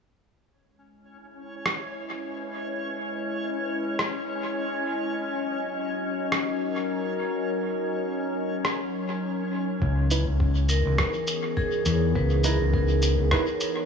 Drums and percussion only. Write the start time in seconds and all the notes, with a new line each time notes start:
1.66 cross-stick
3.99 cross-stick
6.32 cross-stick
8.65 cross-stick
9.82 kick
10.11 shaker
10.40 kick
10.69 shaker
10.98 kick, cross-stick
11.27 shaker
11.57 kick
11.86 shaker
12.15 kick
12.44 shaker
12.74 kick
13.02 shaker
13.31 kick, cross-stick
13.61 shaker